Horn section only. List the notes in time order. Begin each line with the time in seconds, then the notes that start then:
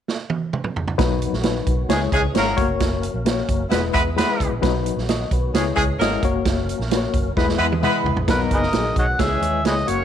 1.90 E3 G#3 C#4 G#4
2.14 E3 G#3 C#4 G#4
2.36 F#3 A#3 C#4 A#4
3.70 G#3 B3 E4 B4
3.93 G#3 B3 E4 B4
4.17 G#3 B3 E4 B4
5.54 E3 G#3 C#4 G#4
5.75 E3 G#3 C#4 G#4
5.99 F#3 A#3 C#4 A#4
7.36 G#3 B3 E4 B4
7.58 G#3 B3 E4 B4
7.83 G#3 B3 E4 B4
8.27 F#3 A#3 D#4 A#4
9.19 E3 G#3 C#4 G#4
9.86 C#3 F#3 A#3 F#4